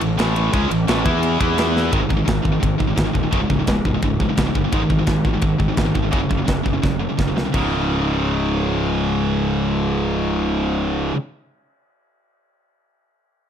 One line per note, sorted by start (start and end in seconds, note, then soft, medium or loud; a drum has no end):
0.01 0.18 A1 medium
0.01 0.15 A2 medium
0.01 0.15 E3 medium
0.01 ride medium
0.18 0.51 A1 loud
0.18 0.52 A2 loud
0.18 0.52 E3 loud
0.18 0.53 A3 loud
0.18 snare loud
0.18 ride loud
0.36 ride medium
0.52 0.70 C#2 loud
0.52 0.70 C#3 medium
0.52 0.70 G#3 loud
0.52 0.70 C#4 loud
0.52 kick loud
0.52 ride loud
0.70 0.87 A1 medium
0.70 0.84 A2 medium
0.70 0.85 E3 medium
0.70 ride medium
0.88 1.05 A1 medium
0.88 1.05 A2 medium
0.88 1.03 E3 medium
0.88 1.04 A3 loud
0.88 snare loud
0.88 ride medium
1.04 1.38 E2 loud
1.04 1.39 E3 medium
1.04 1.39 B3 loud
1.04 1.40 E4 medium
1.04 kick loud
1.04 ride medium
1.23 ride loud
1.40 1.89 E2 medium
1.40 1.92 E3 loud
1.40 1.92 B3 medium
1.40 1.92 E4 loud
1.40 kick loud
1.40 ride medium
1.58 snare loud
1.58 ride loud
1.77 snare medium
1.92 2.03 G#1 medium
1.92 2.00 G#2 medium
1.92 2.00 D#3 medium
1.92 2.00 G#3 loud
1.92 kick loud
1.92 ride bell medium
2.01 2.08 G#2 medium
2.01 2.08 D#3 medium
2.09 2.21 G#1 medium
2.09 2.16 G#2 medium
2.09 2.15 D#3 medium
2.09 kick medium
2.17 2.24 G#2 medium
2.17 2.24 D#3 medium
2.25 2.38 G#1 medium
2.25 2.41 G#2 medium
2.25 2.41 D#3 medium
2.25 kick loud
2.25 snare loud
2.25 ride bell medium
2.42 2.56 G#1 medium
2.42 2.51 G#2 medium
2.42 2.50 D#3 medium
2.42 kick medium
2.52 2.59 G#2 medium
2.52 2.59 D#3 medium
2.60 2.74 G#1 medium
2.60 2.77 G#2 medium
2.60 2.77 D#3 medium
2.60 kick loud
2.60 ride bell medium
2.78 2.91 G#1 medium
2.78 2.87 G#2 medium
2.78 2.86 D#3 medium
2.78 kick medium
2.87 2.95 G#2 medium
2.87 2.95 D#3 medium
2.96 3.08 G#1 medium
2.96 3.04 G#2 medium
2.96 3.03 D#3 medium
2.96 kick loud
2.96 snare loud
2.96 ride bell medium
3.04 3.12 G#2 medium
3.04 3.12 D#3 medium
3.13 3.26 D#1 medium
3.13 3.22 G#2 medium
3.13 3.22 D#3 medium
3.13 kick medium
3.23 3.31 G#2 medium
3.23 3.32 D#3 medium
3.31 3.43 C#1 medium
3.31 3.39 C#2 medium
3.31 3.40 G#2 medium
3.31 3.40 C#3 loud
3.31 kick loud
3.31 ride bell medium
3.41 3.49 C#2 medium
3.41 3.49 G#2 medium
3.50 3.61 C#1 medium
3.50 3.59 C#2 medium
3.50 3.58 G#2 medium
3.50 kick medium
3.59 3.67 C#2 medium
3.59 3.67 G#2 medium
3.67 3.78 C#1 medium
3.67 3.84 C#2 medium
3.67 3.84 G#2 medium
3.67 kick loud
3.67 snare loud
3.67 ride bell medium
3.85 3.96 C#1 medium
3.85 3.93 C#2 medium
3.85 3.93 G#2 medium
3.85 kick medium
3.94 4.02 C#2 medium
3.94 4.02 G#2 medium
4.02 4.24 C#1 medium
4.02 4.19 C#2 medium
4.02 4.19 G#2 medium
4.02 kick loud
4.02 ride bell medium
4.20 4.28 C#2 medium
4.20 4.28 G#2 medium
4.20 kick medium
4.29 4.37 C#2 medium
4.29 4.37 G#2 medium
4.37 4.48 C#1 medium
4.37 4.45 C#2 medium
4.37 4.45 G#2 medium
4.37 kick loud
4.37 snare loud
4.37 ride bell medium
4.46 4.54 C#2 medium
4.46 4.54 G#2 medium
4.55 4.66 G1 medium
4.55 4.63 C#2 medium
4.55 4.63 G#2 medium
4.55 kick medium
4.64 4.72 C#2 medium
4.64 4.71 G#2 medium
4.72 4.83 G#1 medium
4.72 4.80 G#2 medium
4.72 4.80 D#3 loud
4.72 4.80 G#3 loud
4.72 kick loud
4.72 ride bell medium
4.81 4.89 G#2 medium
4.81 4.88 D#3 medium
4.90 5.01 G#1 medium
4.90 4.98 G#2 medium
4.90 4.97 D#3 medium
4.90 kick medium
4.99 5.05 G#2 medium
4.99 5.06 D#3 medium
5.07 5.18 G#1 medium
5.07 5.23 G#2 medium
5.07 5.23 D#3 medium
5.07 kick loud
5.07 snare loud
5.07 ride bell medium
5.25 5.36 G#1 medium
5.25 5.32 G#2 medium
5.25 5.32 D#3 medium
5.25 kick medium
5.33 5.40 G#2 medium
5.33 5.41 D#3 medium
5.41 5.53 G#1 medium
5.41 5.58 G#2 medium
5.41 5.57 D#3 medium
5.41 kick loud
5.41 ride bell medium
5.58 5.71 G#1 medium
5.58 5.67 G#2 medium
5.58 5.67 D#3 medium
5.58 kick medium
5.68 5.76 G#2 medium
5.68 5.77 D#3 medium
5.77 5.88 G#1 medium
5.77 5.84 G#2 medium
5.77 5.84 D#3 medium
5.77 kick loud
5.77 snare loud
5.77 ride bell medium
5.85 5.94 G#2 medium
5.85 5.93 D#3 medium
5.95 6.13 G#1 medium
5.95 6.02 G#2 medium
5.95 6.02 D#3 medium
5.95 kick medium
6.03 6.11 G#2 medium
6.03 6.12 D#3 medium
6.11 6.24 F#1 medium
6.11 6.19 F#2 medium
6.11 6.19 C#3 medium
6.11 6.20 F#3 medium
6.11 kick loud
6.11 ride bell medium
6.20 6.29 F#2 medium
6.20 6.29 C#3 medium
6.30 6.41 F#1 medium
6.30 6.37 F#2 medium
6.30 6.37 C#3 medium
6.30 kick medium
6.38 6.45 F#2 medium
6.38 6.45 C#3 medium
6.46 6.59 F#1 medium
6.46 6.63 F#2 medium
6.46 6.62 C#3 medium
6.46 kick loud
6.46 snare loud
6.46 ride bell medium
6.64 6.76 F#1 medium
6.64 6.72 F#2 medium
6.64 6.72 C#3 medium
6.64 kick medium
6.73 6.81 F#2 medium
6.73 6.81 C#3 medium
6.82 7.05 F#1 medium
6.82 6.98 F#2 medium
6.82 6.99 C#3 medium
6.82 kick loud
6.82 snare medium
7.00 7.08 F#2 medium
7.00 7.08 C#3 medium
7.09 7.16 F#2 medium
7.09 7.17 C#3 medium
7.18 7.29 F#1 medium
7.18 7.27 F#2 medium
7.18 7.27 C#3 medium
7.18 kick medium
7.18 snare medium
7.28 7.35 F#2 medium
7.28 7.35 C#3 medium
7.36 7.46 C2 medium
7.36 7.44 F#2 medium
7.36 7.44 C#3 medium
7.36 snare medium
7.45 7.52 F#2 medium
7.45 7.54 C#3 medium
7.52 11.11 C#1 medium
7.52 11.13 C#2 medium
7.52 11.15 G#2 medium
7.52 11.17 C#3 medium
7.52 kick loud
7.52 crash medium